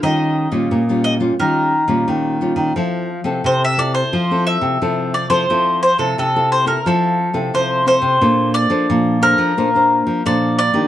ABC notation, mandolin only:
X:1
M:4/4
L:1/16
Q:1/4=88
K:F
V:1 name="Mandolin"
_e6 e2 B6 z2 | z4 c e d c3 e4 d c- | c2 c A A2 c B A4 c2 c2- | c2 d4 B6 d2 d2 |]